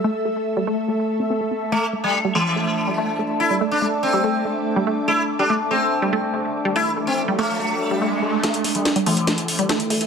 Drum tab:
HH |----------------|----------------|----------------|----------------|
SD |----------------|----------------|----------------|----------------|

HH |----------------|xxoxxxoxxxoxxxox|
SD |----------------|o---o---o---o---|